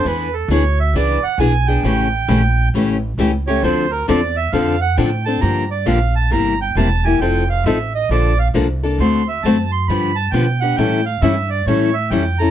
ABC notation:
X:1
M:4/4
L:1/8
Q:"Swing" 1/4=134
K:Dm
V:1 name="Accordion"
=B A ^c e d ^f ^g =g- | g4 z3 ^c | c B d e f ^f g a | b d f a b g a ^g |
g f e _e d f z2 | c' e a c' =b a g ^f | g f e d ^c e g b |]
V:2 name="Steel-string acoustic guitar"
[E,=B,D^G] z [E,B,DG] z [E,B,DG] z [E,B,DG] [B,DG] | [^C,E,A,^CG] z [C,E,A,CG] z [C,E,A,CG] z [C,E,A,CG] [A,CG] | [D,F,CDA] z [D,F,CDA] z [D,F,CDA] z [D,F,CDA] [CDA] | [D,F,B,DG] z [D,F,B,DG] z [C,G,B,EG] z [C,G,B,EG] [B,EG] |
[F,C_EA] z [F,CEA] z [D,F,B,DA] z [D,F,B,DA] [B,DA] | [D,A,C^FA] z [D,A,CFA] z [D,=F,=B,DG] z [D,F,B,DG] [B,DG] | [E,G,^CEA] z [E,G,CEA] z [E,G,CEA] z [E,G,CEA] [CEA] |]
V:3 name="Upright bass" clef=bass
E,,2 D,,2 ^C,, z =B,,,2 | A,,,2 B,,,2 A,,,2 ^C,,2 | D,,2 E,,2 F,,2 A,,2 | G,,2 B,,,2 G,,,2 E,,,2 |
F,,,2 A,,,2 B,,,2 C,,2 | D,,2 ^F,,2 G,,2 =B,,2 | A,,2 G,,2 A,,2 F,,2 |]